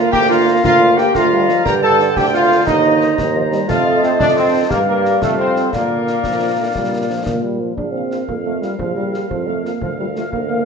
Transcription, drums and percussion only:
0.13 concert bass drum medium
0.13 snare medium
0.64 concert bass drum medium
0.64 snare medium
0.98 snare medium
1.15 concert bass drum medium
1.15 snare medium
1.49 snare medium
1.66 concert bass drum medium
1.66 snare medium
2.00 snare medium
2.16 concert bass drum medium
2.16 snare medium
2.67 concert bass drum medium
2.67 snare medium
3.01 snare soft
3.18 concert bass drum medium
3.18 snare medium
3.52 snare medium
3.69 concert bass drum medium
3.69 snare medium
3.69 crash soft
4.03 snare medium
4.20 concert bass drum medium
4.20 snare medium
4.71 concert bass drum medium
4.71 snare medium
5.05 snare soft
5.22 concert bass drum medium
5.22 snare medium
5.56 snare soft
5.73 concert bass drum medium
5.73 snare medium
6.07 snare soft
6.24 concert bass drum medium
6.24 snare medium
6.75 concert bass drum medium
6.75 snare medium
7.26 concert bass drum medium
7.26 snare medium
7.78 concert bass drum medium
8.11 snare soft
8.28 concert bass drum medium
8.62 snare soft
8.79 concert bass drum medium
9.14 snare soft
9.31 concert bass drum medium
9.65 snare soft
9.81 concert bass drum medium
10.16 snare soft
10.33 concert bass drum medium

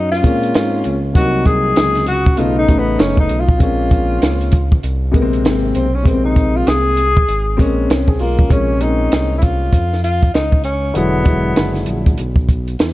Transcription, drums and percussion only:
0.13 snare soft
0.24 kick medium
0.24 closed hi-hat medium
0.43 closed hi-hat medium
0.55 snare loud
0.55 closed hi-hat medium
0.84 closed hi-hat medium
1.15 kick loud
1.15 closed hi-hat medium
1.46 kick medium
1.46 closed hi-hat medium
1.76 snare loud
1.76 closed hi-hat medium
1.95 snare soft
1.95 closed hi-hat medium
2.07 closed hi-hat medium
2.26 kick medium
2.37 closed hi-hat medium
2.69 kick medium
2.69 closed hi-hat medium
2.99 snare loud
2.99 closed hi-hat medium
3.17 kick medium
3.29 closed hi-hat medium
3.49 kick medium
3.60 kick loud
3.60 closed hi-hat medium
3.91 kick medium
3.91 closed hi-hat medium
4.22 snare loud
4.22 closed hi-hat loud
4.41 closed hi-hat medium
4.52 kick loud
4.52 closed hi-hat medium
4.72 kick loud
4.83 closed hi-hat medium
5.14 kick medium
5.14 closed hi-hat medium
5.33 closed hi-hat medium
5.45 snare loud
5.45 closed hi-hat medium
5.75 closed hi-hat medium
6.06 kick loud
6.06 closed hi-hat medium
6.36 kick medium
6.36 closed hi-hat medium
6.67 snare loud
6.67 closed hi-hat medium
6.97 closed hi-hat medium
7.17 kick loud
7.28 closed hi-hat medium
7.59 kick medium
7.59 closed hi-hat medium
7.90 snare loud
7.90 closed hi-hat medium
8.08 kick medium
8.19 open hi-hat medium
8.39 kick medium
8.50 kick loud
8.50 closed hi-hat medium
8.81 closed hi-hat medium
9.12 snare loud
9.12 closed hi-hat medium
9.42 kick medium
9.42 closed hi-hat medium
9.73 kick medium
9.73 closed hi-hat medium
9.93 snare soft
10.04 closed hi-hat medium
10.23 kick medium
10.23 closed hi-hat medium
10.34 snare loud
10.34 closed hi-hat medium
10.52 kick medium
10.64 closed hi-hat medium
10.95 closed hi-hat medium
11.25 kick medium
11.25 closed hi-hat medium
11.56 snare loud
11.56 closed hi-hat medium
11.75 snare soft
11.75 closed hi-hat medium
11.86 closed hi-hat medium
12.06 kick medium
12.06 closed hi-hat medium
12.18 closed hi-hat medium
12.36 kick medium
12.49 kick medium
12.49 closed hi-hat medium
12.68 closed hi-hat medium
12.79 snare loud
12.79 closed hi-hat medium

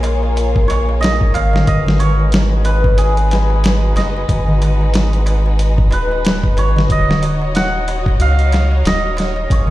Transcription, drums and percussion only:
0.03 closed hi-hat medium
0.03 darbuka tek medium
0.23 darbuka tek soft
0.36 closed hi-hat medium
0.36 darbuka tek soft
0.56 kick medium
0.70 closed hi-hat medium
0.70 darbuka tek medium
0.89 darbuka tek medium
1.03 snare loud
1.03 closed hi-hat medium
1.03 darbuka tek soft
1.21 kick medium
1.34 closed hi-hat medium
1.34 darbuka tek medium
1.53 snare medium
1.53 darbuka tek medium
1.53 darbuka dum medium
1.67 kick loud
1.67 closed hi-hat medium
1.67 darbuka tek soft
1.86 snare medium
1.86 darbuka dum medium
1.99 closed hi-hat medium
1.99 darbuka tek medium
2.20 darbuka tek soft
2.32 snare loud
2.32 closed hi-hat medium
2.32 darbuka tek soft
2.64 closed hi-hat medium
2.64 darbuka tek medium
2.84 kick loud
2.84 darbuka tek medium
2.98 closed hi-hat medium
2.98 darbuka tek soft
3.17 closed hi-hat soft
3.31 snare medium
3.31 closed hi-hat medium
3.31 darbuka tek medium
3.50 darbuka tek medium
3.64 snare loud
3.64 closed hi-hat loud
3.64 darbuka tek soft
3.96 snare soft
3.96 closed hi-hat medium
3.96 darbuka tek medium
4.17 darbuka tek soft
4.29 kick loud
4.29 closed hi-hat medium
4.29 darbuka tek soft
4.48 darbuka dum medium
4.62 closed hi-hat medium
4.62 darbuka tek medium
4.81 darbuka tek soft
4.94 snare loud
4.94 closed hi-hat medium
4.94 darbuka tek soft
5.13 closed hi-hat soft
5.26 closed hi-hat medium
5.26 darbuka tek loud
5.46 darbuka tek medium
5.59 closed hi-hat medium
5.59 darbuka tek soft
5.78 kick loud
5.91 closed hi-hat medium
5.91 darbuka tek medium
6.12 darbuka tek soft
6.25 snare loud
6.25 closed hi-hat medium
6.25 darbuka tek soft
6.44 kick loud
6.57 closed hi-hat medium
6.57 darbuka tek medium
6.76 snare medium
6.76 darbuka tek medium
6.76 darbuka dum medium
6.90 kick loud
6.90 closed hi-hat medium
6.90 darbuka tek soft
7.09 snare medium
7.09 darbuka dum medium
7.22 closed hi-hat medium
7.22 darbuka tek medium
7.42 darbuka tek soft
7.55 snare loud
7.55 closed hi-hat medium
7.55 darbuka tek soft
7.88 closed hi-hat medium
7.88 darbuka tek medium
8.06 kick loud
8.06 darbuka tek medium
8.20 closed hi-hat medium
8.20 darbuka tek soft
8.39 closed hi-hat soft
8.52 snare soft
8.52 closed hi-hat medium
8.52 darbuka tek medium
8.72 darbuka tek medium
8.85 snare loud
8.85 closed hi-hat medium
8.85 darbuka tek soft
9.17 snare soft
9.17 closed hi-hat medium
9.17 darbuka tek medium
9.36 darbuka tek soft
9.50 kick loud
9.50 closed hi-hat medium
9.50 darbuka tek soft
9.67 darbuka dum medium

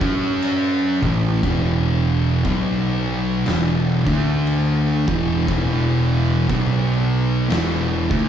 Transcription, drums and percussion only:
0.01 kick loud
0.42 crash medium
1.03 kick loud
1.43 kick loud
1.43 crash medium
2.45 kick loud
2.45 crash medium
3.46 snare loud
3.46 crash medium
4.07 kick loud
4.47 crash medium
5.08 kick loud
5.48 kick loud
5.48 crash medium
6.49 kick loud
6.49 crash medium
7.50 snare loud
7.50 crash medium
8.11 kick loud

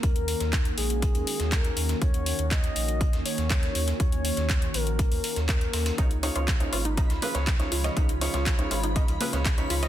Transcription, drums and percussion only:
0.03 kick loud
0.03 closed hi-hat medium
0.16 closed hi-hat soft
0.28 closed hi-hat medium
0.28 open hi-hat loud
0.40 snare soft
0.40 closed hi-hat soft
0.53 kick loud
0.53 snare loud
0.53 clap loud
0.53 closed hi-hat medium
0.65 closed hi-hat soft
0.78 closed hi-hat medium
0.78 open hi-hat loud
0.90 closed hi-hat soft
1.02 kick loud
1.02 closed hi-hat medium
1.15 closed hi-hat soft
1.27 closed hi-hat medium
1.27 open hi-hat loud
1.40 snare soft
1.40 closed hi-hat soft
1.52 kick loud
1.52 snare loud
1.52 clap loud
1.52 closed hi-hat medium
1.64 closed hi-hat soft
1.77 closed hi-hat medium
1.77 open hi-hat loud
1.89 snare medium
1.89 closed hi-hat soft
2.02 kick loud
2.02 closed hi-hat medium
2.14 closed hi-hat soft
2.26 closed hi-hat medium
2.26 open hi-hat loud
2.39 closed hi-hat soft
2.51 kick loud
2.51 snare loud
2.51 clap loud
2.51 closed hi-hat medium
2.64 closed hi-hat soft
2.76 closed hi-hat medium
2.76 open hi-hat loud
2.88 closed hi-hat soft
3.01 kick loud
3.01 closed hi-hat medium
3.13 snare soft
3.13 closed hi-hat soft
3.26 closed hi-hat medium
3.26 open hi-hat loud
3.38 snare soft
3.38 closed hi-hat soft
3.50 kick loud
3.50 snare loud
3.50 clap loud
3.50 closed hi-hat medium
3.63 snare medium
3.63 closed hi-hat soft
3.75 closed hi-hat medium
3.75 open hi-hat loud
3.88 snare medium
3.88 closed hi-hat soft
4.00 kick loud
4.00 closed hi-hat medium
4.12 closed hi-hat soft
4.25 closed hi-hat medium
4.25 open hi-hat loud
4.37 snare soft
4.37 closed hi-hat soft
4.49 kick loud
4.49 snare loud
4.49 clap loud
4.49 closed hi-hat medium
4.62 closed hi-hat soft
4.74 closed hi-hat medium
4.74 open hi-hat loud
4.87 closed hi-hat soft
4.99 kick loud
4.99 closed hi-hat medium
5.12 closed hi-hat soft
5.12 open hi-hat medium
5.24 closed hi-hat medium
5.24 open hi-hat loud
5.36 snare soft
5.36 closed hi-hat soft
5.49 kick loud
5.49 snare loud
5.49 clap loud
5.49 closed hi-hat medium
5.61 closed hi-hat soft
5.73 snare loud
5.73 closed hi-hat medium
5.73 open hi-hat loud
5.86 snare loud
5.86 closed hi-hat soft
5.86 closed hi-hat medium
5.98 kick loud
5.98 closed hi-hat medium
6.11 closed hi-hat soft
6.23 closed hi-hat medium
6.23 open hi-hat loud
6.36 closed hi-hat soft
6.48 kick loud
6.48 snare loud
6.48 clap loud
6.48 closed hi-hat medium
6.60 closed hi-hat soft
6.73 closed hi-hat medium
6.73 open hi-hat loud
6.85 closed hi-hat soft
6.97 kick loud
6.97 closed hi-hat medium
7.10 snare soft
7.10 closed hi-hat soft
7.22 closed hi-hat medium
7.22 open hi-hat loud
7.35 snare soft
7.35 closed hi-hat soft
7.47 kick loud
7.47 snare loud
7.47 clap loud
7.47 closed hi-hat medium
7.60 snare medium
7.60 closed hi-hat soft
7.72 closed hi-hat medium
7.72 open hi-hat loud
7.84 snare medium
7.84 closed hi-hat soft
7.97 kick loud
7.97 closed hi-hat medium
8.09 closed hi-hat soft
8.21 closed hi-hat medium
8.21 open hi-hat loud
8.34 snare soft
8.34 closed hi-hat soft
8.46 kick loud
8.46 snare loud
8.46 clap loud
8.46 closed hi-hat medium
8.59 closed hi-hat soft
8.71 closed hi-hat medium
8.71 open hi-hat loud
8.84 closed hi-hat soft
8.96 kick loud
8.96 closed hi-hat medium
9.08 closed hi-hat soft
9.21 closed hi-hat medium
9.21 open hi-hat loud
9.33 snare soft
9.33 closed hi-hat soft
9.45 kick loud
9.45 snare loud
9.45 clap loud
9.45 closed hi-hat medium
9.58 closed hi-hat soft
9.70 closed hi-hat medium
9.70 open hi-hat loud
9.83 snare medium
9.83 closed hi-hat soft

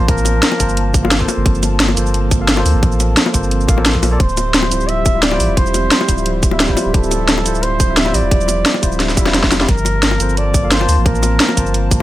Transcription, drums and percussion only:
0.08 kick loud
0.08 closed hi-hat medium
0.18 shaker soft
0.25 closed hi-hat loud
0.25 high bongo medium
0.25 shaker medium
0.43 snare loud
0.43 closed hi-hat medium
0.52 high bongo medium
0.60 kick medium
0.60 closed hi-hat loud
0.60 shaker medium
0.69 shaker soft
0.77 closed hi-hat medium
0.94 kick loud
0.94 closed hi-hat medium
0.94 shaker medium
1.05 high bongo medium
1.11 snare loud
1.11 closed hi-hat medium
1.21 kick medium
1.28 open hi-hat medium
1.28 high bongo medium
1.28 shaker medium
1.46 kick loud
1.46 closed hi-hat medium
1.55 shaker soft
1.63 closed hi-hat loud
1.63 high bongo medium
1.63 shaker medium
1.80 snare loud
1.80 closed hi-hat medium
1.88 high bongo medium
1.97 closed hi-hat medium
1.97 shaker medium
2.06 shaker soft
2.14 closed hi-hat medium
2.31 kick loud
2.31 closed hi-hat medium
2.31 shaker medium
2.48 snare loud
2.48 closed hi-hat medium
2.57 high bongo medium
2.66 open hi-hat medium
2.66 shaker medium
2.83 kick loud
2.83 closed hi-hat medium
2.92 shaker soft
3.00 closed hi-hat medium
3.00 high bongo medium
3.00 shaker medium
3.17 snare loud
3.17 closed hi-hat medium
3.26 high bongo medium
3.34 kick medium
3.34 closed hi-hat medium
3.34 shaker medium
3.43 shaker soft
3.51 closed hi-hat medium
3.61 shaker soft
3.68 kick loud
3.68 closed hi-hat medium
3.68 shaker medium
3.78 high bongo medium
3.86 snare loud
3.86 closed hi-hat medium
3.95 kick medium
4.03 open hi-hat medium
4.03 high bongo loud
4.03 shaker medium
4.20 kick loud
4.20 closed hi-hat medium
4.29 shaker soft
4.37 closed hi-hat medium
4.37 high bongo medium
4.37 shaker medium
4.54 snare loud
4.54 closed hi-hat medium
4.62 high bongo medium
4.71 closed hi-hat medium
4.71 shaker medium
4.81 shaker soft
4.89 closed hi-hat medium
5.06 kick loud
5.06 closed hi-hat medium
5.06 shaker medium
5.23 snare loud
5.23 closed hi-hat medium
5.31 high bongo medium
5.40 open hi-hat medium
5.40 shaker medium
5.57 kick loud
5.57 closed hi-hat medium
5.66 shaker soft
5.74 closed hi-hat medium
5.74 high bongo medium
5.74 shaker medium
5.91 snare loud
5.91 closed hi-hat medium
6.01 high bongo medium
6.08 kick medium
6.08 closed hi-hat medium
6.08 shaker medium
6.18 shaker soft
6.26 closed hi-hat medium
6.43 kick loud
6.43 closed hi-hat medium
6.43 shaker medium
6.51 high bongo medium
6.60 snare loud
6.60 closed hi-hat medium
6.69 kick medium
6.77 open hi-hat medium
6.77 high bongo medium
6.77 shaker medium
6.94 kick loud
6.94 closed hi-hat medium
7.04 shaker soft
7.11 closed hi-hat medium
7.11 high bongo medium
7.11 shaker medium
7.29 snare loud
7.29 closed hi-hat medium
7.38 high bongo medium
7.46 closed hi-hat medium
7.46 shaker medium
7.55 shaker soft
7.63 closed hi-hat medium
7.80 kick loud
7.80 closed hi-hat medium
7.80 shaker medium
7.97 snare loud
7.97 closed hi-hat medium
8.06 high bongo medium
8.14 open hi-hat medium
8.14 shaker medium
8.31 kick loud
8.31 closed hi-hat medium
8.41 shaker soft
8.48 closed hi-hat medium
8.48 high bongo medium
8.48 shaker medium
8.66 snare loud
8.66 closed hi-hat medium
8.74 high bongo medium
8.83 kick medium
8.83 closed hi-hat loud
8.83 shaker medium
8.92 shaker soft
9.00 snare medium
9.00 closed hi-hat medium
9.09 snare medium
9.09 shaker soft
9.17 kick loud
9.17 closed hi-hat medium
9.17 shaker medium
9.26 snare medium
9.26 high bongo medium
9.34 snare medium
9.34 closed hi-hat medium
9.43 kick medium
9.43 snare medium
9.52 snare loud
9.52 open hi-hat medium
9.52 high bongo medium
9.52 shaker medium
9.61 snare medium
9.69 kick loud
9.69 closed hi-hat medium
9.78 shaker soft
9.85 closed hi-hat loud
9.85 high bongo medium
9.85 shaker medium
10.03 snare loud
10.03 closed hi-hat medium
10.11 high bongo medium
10.20 closed hi-hat medium
10.20 shaker medium
10.29 shaker soft
10.37 closed hi-hat medium
10.54 kick loud
10.54 closed hi-hat medium
10.54 shaker medium
10.72 snare loud
10.72 closed hi-hat medium
10.81 high bongo medium
10.89 open hi-hat medium
10.89 shaker medium
11.06 kick loud
11.06 closed hi-hat medium
11.15 shaker soft
11.23 closed hi-hat loud
11.23 high bongo medium
11.23 shaker medium
11.40 snare loud
11.40 closed hi-hat medium
11.49 high bongo medium
11.57 kick medium
11.57 closed hi-hat loud
11.57 shaker medium
11.67 shaker soft
11.74 closed hi-hat medium
11.91 kick loud
11.91 closed hi-hat loud
11.91 shaker medium

